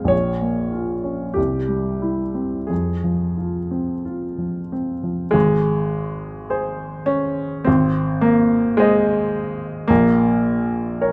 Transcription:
Already playing: G#3 C4 G#4 F5
0.04 A#1 C#5
0.41 A#3
0.72 F4
1.04 C#4
1.34 C2 G4
1.68 G3
2.02 E4
2.34 C4
2.67 F2 G#4
3.04 F3
3.37 F4
3.71 C4
4.05 F4
4.38 F3
4.72 C4
5.03 F3
5.31 G#1 G#3
6.50 G#4 C5
7.06 C#4
7.65 G#1 C4
8.21 A#3
8.77 G#3 C5 D#5
9.88 A#1 A#3
11.01 A#4 C#5

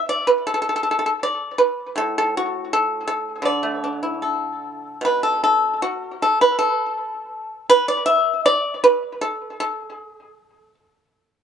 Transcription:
0.09 D5
0.27 B4
0.47 A4
0.54 A4
0.62 A4
0.69 A4
0.76 A4
0.83 A4
0.91 A4
0.99 A4
1.06 A4
1.23 D5
1.58 B4
1.96 A2 A4
2.18 A4
2.37 F#4
2.73 A4
3.08 A4
3.42 D3 D5
3.63 A3
3.84 D4
4.03 E4
4.22 A4
5.01 B2 B4
5.23 A4
5.44 A4
5.82 F#4
6.22 A4
6.41 B4
6.59 A4
7.70 B4
7.88 D5
8.06 E5
8.46 D5
8.84 B4
9.21 A4
9.60 A4

